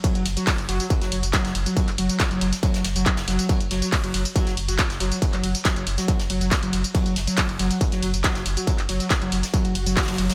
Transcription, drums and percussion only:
0.04 kick, closed hi-hat, ride, tambourine
0.15 closed hi-hat, tambourine
0.25 snare, open hi-hat, ride
0.37 closed hi-hat, tambourine
0.47 kick, snare, clap, closed hi-hat, open hi-hat, tambourine
0.58 closed hi-hat, tambourine
0.69 open hi-hat, ride
0.80 closed hi-hat, tambourine
0.90 kick, closed hi-hat, ride, tambourine
1.01 snare, closed hi-hat, tambourine
1.12 open hi-hat, ride
1.23 closed hi-hat, tambourine
1.33 kick, snare, clap, closed hi-hat, ride, tambourine
1.45 snare, closed hi-hat, tambourine
1.55 open hi-hat, ride
1.66 closed hi-hat, tambourine
1.77 kick, closed hi-hat, ride, tambourine
1.88 clap, closed hi-hat, ride, tambourine
1.98 open hi-hat, ride
2.09 closed hi-hat, tambourine
2.20 kick, snare, clap, closed hi-hat, ride, tambourine
2.31 closed hi-hat, tambourine
2.41 open hi-hat, ride
2.53 snare, closed hi-hat, tambourine
2.63 kick, closed hi-hat, ride, tambourine
2.74 snare, closed hi-hat, tambourine
2.84 snare, open hi-hat, ride
2.95 snare, closed hi-hat, tambourine
3.06 kick, clap, open hi-hat, ride, tambourine
3.17 snare, closed hi-hat, ride, tambourine
3.28 snare, open hi-hat, ride
3.39 closed hi-hat, ride, tambourine
3.49 kick, closed hi-hat, ride, tambourine
3.60 closed hi-hat, tambourine
3.71 snare, open hi-hat, ride
3.82 closed hi-hat, tambourine
3.92 kick, snare, clap, closed hi-hat, open hi-hat, tambourine
4.04 closed hi-hat, tambourine
4.14 open hi-hat, ride
4.25 closed hi-hat, tambourine
4.36 kick, closed hi-hat, ride, tambourine
4.47 snare, closed hi-hat, tambourine
4.57 open hi-hat, ride
4.68 closed hi-hat, tambourine
4.79 kick, snare, clap, closed hi-hat, ride, tambourine
4.90 snare, closed hi-hat, tambourine
5.00 open hi-hat, ride
5.12 closed hi-hat, tambourine
5.22 kick, closed hi-hat, ride, tambourine
5.33 clap, closed hi-hat, ride, tambourine
5.43 open hi-hat, ride
5.55 closed hi-hat, tambourine
5.65 kick, snare, clap, closed hi-hat, ride, tambourine
5.76 closed hi-hat, tambourine
5.87 open hi-hat, ride
5.98 snare, closed hi-hat, tambourine
6.08 kick, closed hi-hat, ride, tambourine
6.19 snare, closed hi-hat, tambourine
6.29 open hi-hat, ride
6.41 closed hi-hat, tambourine
6.51 kick, snare, clap, open hi-hat, ride, tambourine
6.63 closed hi-hat, tambourine
6.73 open hi-hat, ride
6.84 closed hi-hat, tambourine
6.95 kick, closed hi-hat, ride, tambourine
7.06 closed hi-hat, tambourine
7.16 snare, open hi-hat, ride
7.27 closed hi-hat, tambourine
7.37 kick, snare, clap, closed hi-hat, open hi-hat, tambourine
7.49 closed hi-hat, tambourine
7.59 open hi-hat, ride
7.71 closed hi-hat, tambourine
7.81 kick, closed hi-hat, ride, tambourine
7.92 snare, closed hi-hat, tambourine
8.03 open hi-hat, ride
8.14 closed hi-hat, tambourine
8.24 kick, snare, clap, closed hi-hat, ride, tambourine
8.35 snare, closed hi-hat, tambourine
8.45 open hi-hat, ride
8.57 closed hi-hat, tambourine
8.67 kick, closed hi-hat, ride, tambourine
8.79 clap, closed hi-hat, ride, tambourine
8.89 open hi-hat, ride
9.00 closed hi-hat, tambourine
9.10 kick, snare, clap, closed hi-hat, ride, tambourine
9.22 closed hi-hat, tambourine
9.32 open hi-hat, ride
9.43 snare, closed hi-hat, tambourine
9.54 kick, closed hi-hat, ride, tambourine
9.65 closed hi-hat, tambourine
9.75 open hi-hat, ride
9.86 closed hi-hat, tambourine
9.96 kick, snare, clap, open hi-hat, tambourine
10.02 snare, open hi-hat
10.08 snare, closed hi-hat, open hi-hat, tambourine
10.12 snare, open hi-hat
10.18 open hi-hat, ride
10.30 snare, closed hi-hat, ride, tambourine

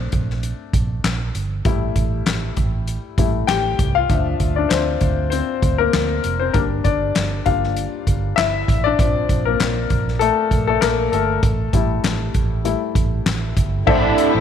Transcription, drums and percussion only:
0.12 kick, closed hi-hat
0.30 snare
0.43 closed hi-hat
0.73 kick, closed hi-hat
1.04 snare, clap, closed hi-hat
1.35 closed hi-hat
1.65 kick, closed hi-hat
1.96 kick, closed hi-hat
2.26 snare, clap, closed hi-hat
2.57 kick, closed hi-hat
2.87 closed hi-hat
3.18 kick, closed hi-hat
3.48 snare, clap, closed hi-hat
3.79 kick, closed hi-hat
4.10 kick, closed hi-hat
4.40 kick, closed hi-hat
4.70 snare, clap, closed hi-hat
5.01 kick, closed hi-hat
5.32 closed hi-hat
5.62 kick, closed hi-hat
5.93 snare, clap, closed hi-hat
6.24 closed hi-hat
6.54 kick, closed hi-hat
6.85 kick, closed hi-hat
7.15 snare, clap, closed hi-hat
7.46 kick, closed hi-hat
7.63 snare
7.76 closed hi-hat
8.07 kick, closed hi-hat
8.38 snare, clap, closed hi-hat
8.68 kick, closed hi-hat
8.99 kick, closed hi-hat
9.29 kick, closed hi-hat
9.60 snare, clap, closed hi-hat
9.90 kick, closed hi-hat
10.08 snare
10.21 closed hi-hat
10.51 kick, closed hi-hat
10.82 snare, clap, closed hi-hat
11.13 closed hi-hat
11.43 kick, closed hi-hat
11.73 kick, closed hi-hat
12.04 snare, clap, closed hi-hat
12.34 kick, closed hi-hat
12.65 closed hi-hat
12.95 kick, closed hi-hat
13.26 snare, clap, closed hi-hat
13.57 kick, closed hi-hat
13.87 kick, crash
14.18 closed hi-hat

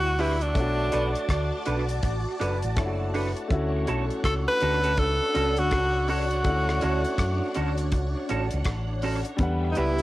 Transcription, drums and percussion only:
0.19 open hi-hat
0.41 closed hi-hat
0.55 kick, closed hi-hat
0.92 closed hi-hat
1.15 closed hi-hat
1.29 kick, cross-stick, closed hi-hat
1.66 closed hi-hat
1.89 closed hi-hat
2.03 kick, closed hi-hat
2.41 closed hi-hat
2.62 closed hi-hat
2.77 kick, cross-stick, closed hi-hat
3.14 open hi-hat
3.36 closed hi-hat
3.50 kick, closed hi-hat
3.87 closed hi-hat
4.10 closed hi-hat
4.24 kick, cross-stick, closed hi-hat
4.60 closed hi-hat
4.84 closed hi-hat
4.97 kick, closed hi-hat
5.35 closed hi-hat
5.56 closed hi-hat
5.71 kick, cross-stick, closed hi-hat
6.08 open hi-hat
6.31 closed hi-hat
6.44 kick, closed hi-hat
6.69 cross-stick
6.81 closed hi-hat
7.04 closed hi-hat
7.18 kick, cross-stick, closed hi-hat
7.54 closed hi-hat
7.78 closed hi-hat
7.92 kick, closed hi-hat
8.29 closed hi-hat
8.51 closed hi-hat
8.64 kick, cross-stick, closed hi-hat
9.02 open hi-hat
9.25 closed hi-hat
9.38 kick, closed hi-hat
9.75 closed hi-hat
9.98 closed hi-hat

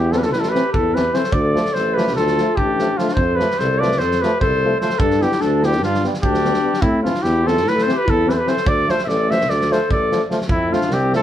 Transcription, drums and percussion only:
0.12 snare
0.22 snare
0.33 snare
0.43 snare
0.55 snare
0.74 kick
0.96 snare
1.14 snare
1.24 snare
1.32 kick
1.56 snare
1.65 snare
1.75 snare
1.98 snare
2.07 snare
2.17 snare
2.27 snare
2.38 snare
2.57 kick
2.79 snare
2.99 snare
3.08 snare
3.17 kick
3.40 snare
3.51 snare
3.59 snare
3.82 snare
3.92 snare
4.00 snare
4.11 snare
4.23 snare
4.41 kick
4.81 snare
4.90 snare
5.00 kick
5.11 snare
5.22 snare
5.32 snare
5.41 snare
5.63 snare
5.72 snare
5.83 snare
5.94 snare
6.04 snare
6.14 snare
6.23 kick
6.34 snare
6.45 snare
6.54 snare
6.74 snare
6.82 kick
7.05 snare
7.14 snare
7.24 snare
7.48 snare
7.57 snare
7.67 snare
7.78 snare
7.89 snare
8.08 kick
8.29 snare
8.47 snare
8.57 snare
8.66 kick
8.89 snare
8.98 snare
9.09 snare
9.31 snare
9.41 snare
9.50 snare
9.61 snare
9.72 snare
9.91 kick
10.12 snare
10.31 snare
10.41 snare
10.49 kick
10.73 snare
10.81 snare
10.91 snare
11.13 snare

